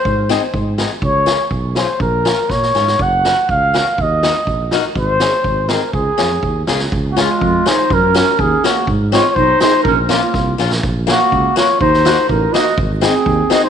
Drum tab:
SD |--o---o-|--o---o-|--o-oooo|--o---o-|
BD |o---o---|o---o---|o---o---|o---o---|

SD |--o---o-|--o---o-|--o---oo|--o---o-|
BD |o---o---|o---o---|o---o---|o---o---|

SD |--o---o-|--o---o-|--o-o-oo|--o---o-|
BD |o---o---|o---o---|o---o---|o---o---|

SD |-oo---o-|--o---o-|
BD |o---o---|o---o---|